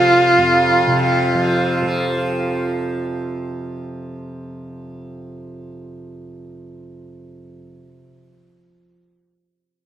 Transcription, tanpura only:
0.00 0.38 F2 medium
0.00 0.87 C3 medium
0.00 1.35 F3 medium
0.38 7.53 F2 medium
0.87 8.02 C3 medium
1.35 1.82 F3 medium
1.82 8.83 F3 medium

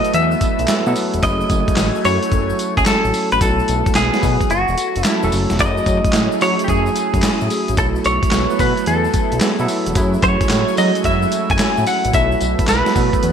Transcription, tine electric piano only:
0.00 0.68 F#3 medium
0.00 0.69 A3 medium
0.00 0.69 B3 medium
0.00 0.69 E4 medium
0.00 0.70 A4 loud
0.68 0.80 F#3 medium
0.68 0.80 A3 medium
0.68 0.80 B3 medium
0.68 0.81 E4 medium
0.68 0.81 A4 loud
0.86 1.13 F#3 loud
0.86 1.13 A3 medium
0.86 1.13 B3 medium
0.86 1.13 E4 medium
0.86 1.14 A4 loud
1.23 1.77 F#3 medium
1.23 1.77 A3 medium
1.23 1.77 C#4 medium
1.23 1.77 E4 medium
1.23 1.32 F#4 medium
1.31 1.81 G#4 medium
2.05 2.59 F#3 medium
2.05 2.59 A3 medium
2.05 2.59 C#4 medium
2.05 2.59 E4 medium
2.05 2.59 F#4 medium
2.87 3.25 F#3 medium
2.87 3.25 A3 medium
2.87 3.25 C#4 medium
2.87 3.25 E4 medium
2.87 3.26 G#5 medium
3.41 3.89 F#3 medium
3.41 3.89 A3 medium
3.41 3.89 B3 medium
3.41 3.89 E4 medium
3.41 3.89 A4 medium
4.14 4.50 F#3 medium
4.14 4.50 A3 medium
4.14 4.51 B3 medium
4.14 4.51 E4 medium
4.14 4.51 B4 medium
5.05 5.17 F#3 medium
5.05 5.17 A3 medium
5.05 5.17 C#4 medium
5.05 5.17 E4 medium
5.05 5.17 A4 medium
5.23 5.49 F#3 loud
5.23 5.50 A3 medium
5.23 5.50 C#4 medium
5.23 5.50 E4 medium
5.23 5.50 A4 loud
5.60 6.13 F#3 medium
5.60 6.13 A3 medium
5.60 6.14 C#4 medium
5.60 6.14 E4 medium
5.60 6.14 G#4 loud
6.41 6.95 F#3 medium
6.41 6.95 A3 medium
6.41 6.95 C#4 medium
6.41 6.95 E4 medium
6.41 6.96 G#4 loud
7.23 7.61 F#3 medium
7.23 7.61 A3 medium
7.23 7.62 C#4 medium
7.23 7.62 E4 medium
7.23 7.62 G#4 loud
7.78 8.25 F#3 medium
7.78 8.25 A3 medium
7.78 8.25 B3 medium
7.78 8.26 E4 medium
7.78 8.26 A4 loud
8.50 9.10 F#3 medium
8.50 9.10 A3 medium
8.50 9.10 B3 medium
8.50 9.10 E4 medium
8.50 9.10 B4 medium
9.41 9.53 F#3 medium
9.41 9.53 A3 medium
9.41 9.53 B3 medium
9.41 9.53 E4 medium
9.41 9.54 A4 loud
9.60 9.86 F#3 loud
9.60 9.86 A3 medium
9.60 9.86 B3 medium
9.60 9.86 E4 medium
9.60 9.86 A4 loud
9.96 10.50 F#3 medium
9.96 10.50 A3 medium
9.96 10.50 C#4 medium
9.96 10.50 E4 loud
9.96 10.50 G#4 loud
10.78 11.31 F#3 medium
10.78 10.86 G#3 medium
10.78 11.32 C#4 medium
10.78 11.32 E4 medium
10.78 11.32 G#4 medium
10.85 11.35 A3 medium
11.59 11.98 F#3 medium
11.59 11.98 A3 medium
11.59 11.98 C#4 medium
11.59 11.98 E4 medium
11.59 11.98 A4 medium
12.14 12.62 F#3 medium
12.14 12.62 A3 medium
12.14 12.62 B3 medium
12.14 12.62 E4 medium
12.14 12.62 A4 loud
12.86 13.32 F#3 medium
12.86 13.32 A3 medium
12.86 13.32 B3 medium
12.86 13.32 E4 medium
12.86 13.32 A4 medium

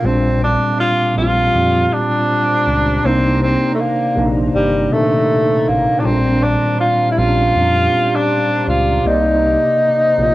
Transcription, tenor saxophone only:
0.05 0.42 C4 medium
0.44 0.78 D4 loud
0.80 1.14 F4 loud
1.18 1.95 F4 loud
1.93 3.07 D4 loud
3.05 3.42 C4 loud
3.43 3.72 C4 medium
3.74 3.82 A3 medium
3.80 4.30 A#3 loud
4.55 4.94 G3 loud
4.93 5.69 A3 loud
5.68 6.01 A#3 medium
5.99 6.07 D4 medium
6.05 6.44 C4 medium
6.43 6.80 D4 loud
6.80 7.09 F4 loud
7.12 7.19 E4 medium
7.18 8.17 F4 loud
8.15 8.67 D4 loud
8.69 9.08 F4 medium
9.06 10.35 D#4 loud

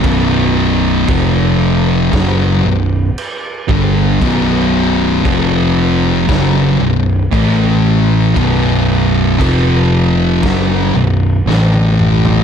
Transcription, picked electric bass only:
0.04 1.04 B0 medium
1.09 2.09 F1 medium
2.13 2.61 F#1 medium
2.65 3.13 B0 medium
3.69 4.17 G1 loud
4.21 5.21 B0 medium
5.25 6.25 F1 medium
6.29 6.77 F#1 medium
6.80 7.28 B0 medium
7.33 8.32 A1 medium
8.36 9.36 B0 medium
9.40 10.39 F1 medium
10.43 10.91 F#1 medium
10.94 11.43 B0 medium
11.46 12.44 A1 loud

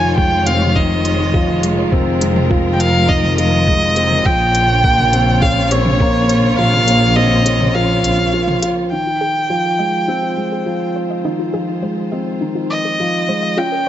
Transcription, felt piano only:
0.00 0.16 F3 medium
0.17 0.45 G#3 medium
0.47 0.63 C4 medium
0.76 1.04 D#3 medium
1.34 1.62 F3 medium
1.63 1.91 G#3 medium
1.92 2.20 C4 medium
2.21 2.49 G#3 medium
2.50 2.78 F3 medium
3.09 3.26 D#3 medium
3.38 3.66 F3 medium
3.67 3.95 G#3 medium
3.96 4.13 C4 medium
4.26 4.53 F3 medium
4.84 5.12 A#3 medium
5.13 5.41 C4 medium
5.42 5.70 C#4 medium
5.71 5.99 C4 medium
6.01 6.28 A#3 loud
6.58 6.75 F3 medium
6.87 7.15 A#3 medium
7.17 7.44 C4 medium
7.46 7.63 C#4 medium
7.75 8.03 F3 medium
8.33 8.61 F3 medium
8.62 8.90 F4 medium
8.91 9.19 D#3 medium
9.50 9.77 F3 medium
9.79 10.07 G#3 medium
10.08 10.36 C4 medium
10.37 10.65 G#3 medium
10.66 10.94 F3 medium
11.24 11.41 D#3 medium
11.53 11.81 F3 medium
11.82 12.10 G#3 medium
12.12 12.29 C4 medium
12.41 12.69 D#3 medium
13.00 13.27 F3 medium
13.29 13.56 G#3 medium
13.57 13.85 C#4 medium

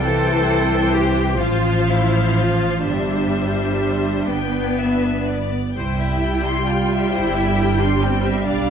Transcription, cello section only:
0.03 0.90 A4 medium
0.92 1.38 G4 medium
1.38 1.85 F4 medium
1.86 2.36 E4 soft
2.37 2.86 F4 soft
2.87 5.25 D4 soft
5.76 6.63 E4 soft
6.67 7.13 F4 medium
7.13 7.81 E4 medium
7.82 8.03 D4 medium
8.02 8.47 C4 medium
8.47 8.70 D4 medium

